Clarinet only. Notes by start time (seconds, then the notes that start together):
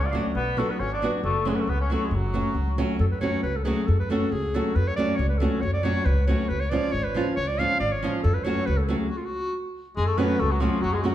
0.05 D5
0.11 D5 F5
0.35 B4
0.59 A4
0.71 B4
0.80 C#5
0.94 D5
1.24 A4
1.49 G#4
1.56 B4
1.61 A4
1.70 B4
1.82 C#5
1.93 A4
2.05 G#4
2.14 F#4
3.00 A4
3.11 B4
3.21 C#5
3.43 B4
3.56 A4
3.64 G#4
3.86 A4
3.99 B4
4.11 A4
4.32 G#4
4.55 A4
4.76 B4
4.87 C#5
4.96 D5
5.16 C#5
5.29 B4
5.38 A4
5.61 C#5
5.73 D5
5.84 C#5
6.05 B4
6.27 C#5
6.48 B4
6.60 C#5
6.70 D5
6.92 C#5
7.03 B4
7.36 C#5
7.48 D5
7.59 F5
7.80 D5
7.92 C#5
8.23 A4
8.34 B4
8.44 C#5
8.66 B4
8.78 A4
8.83 G#4 A4
8.98 G#4
9.09 F#4
9.17 F4
9.25 F#4
9.97 G#4
10.06 A4
10.18 B4
10.40 A4
10.51 F#4
10.61 F4
10.81 F#4
10.92 G#4
11.01 F#4